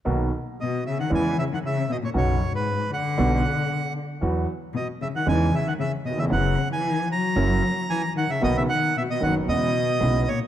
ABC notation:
X:1
M:4/4
L:1/16
Q:1/4=115
K:B
V:1 name="Bandoneon"
z4 d2 e f g2 e f e2 d c | c3 B3 f8 z2 | z4 d2 e f g2 e f e2 d e | f3 g3 a6 g2 f e |
d e f2 e d f2 d6 c2 |]
V:2 name="Upright piano" clef=bass
[B,,,B,,D,A,B,F]2 z6 [E,,C,E,G,B,E]2 z6 | [B,,,B,,C,F,B,F]2 z6 [B,,,B,,=D,=G,B,F]2 z6 | [E,,E,F,B,F]2 z6 [E,,C,E,G,D]2 z4 z/2 D,,/2 E,,/2 ^E,,/2 | [F,,C,F,B,E]2 z6 [F,,C,F,A,E]2 z6 |
[B,,,B,,D,A,B,F]2 z4 [F,,,F,,D,A,B,F]2 [E,,C,E,G,B,E]2 z2 [B,,,B,,C,G,B,E]2 z2 |]
V:3 name="Cello" clef=bass
z4 B,,2 C, D, E,2 C, D, C,2 B,, A,, | F,,3 G,,3 =D,8 z2 | z4 B,,2 C, D, E,2 C, D, C,2 B,, C, | C,3 E,3 F,6 E,2 D, C, |
B,, C, D,2 B,, B,, D,2 B,,6 A,,2 |]
V:4 name="Upright bass" clef=bass
B,,,2 z6 E,,2 z6 | B,,,2 z6 B,,,2 z6 | E,,2 z6 E,,2 z6 | F,,,2 z6 F,,,2 z6 |
B,,,2 z4 F,,,2 E,,2 z2 B,,,2 z2 |]